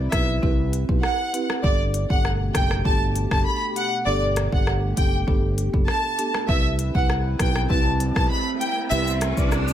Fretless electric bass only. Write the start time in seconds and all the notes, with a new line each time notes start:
0.13 B1
0.43 C2
0.89 B1
1.64 G1
2.10 G1
2.55 F#1
2.85 G1
3.31 F#1
4.06 G1
4.53 G1
4.97 F#1
5.28 G1
5.74 F#1
6.49 C2
6.95 C2
7.40 B1
7.70 C2
8.16 B1
8.91 C2
9.37 C2